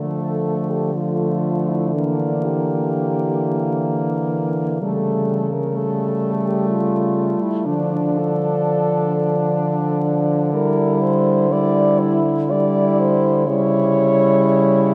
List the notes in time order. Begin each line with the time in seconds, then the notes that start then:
Already playing: D3 A3
0.00 F3 A4
0.70 G4
0.94 F3 A3 F4
1.69 E4
1.93 E3 A#3 D4
2.45 G4
4.81 C#3 G3 A3 A4
5.53 A#4
5.74 G3 A3 A4
6.46 G4
6.69 F4
7.41 E4
7.66 D3 F3 D4
8.18 A4
10.53 G3 E4 A#4
11.02 C5
11.50 G3 E4 D5
11.99 E4
12.50 G3 E4 D5
13.00 C5
13.47 C#3 G3 E4 C#5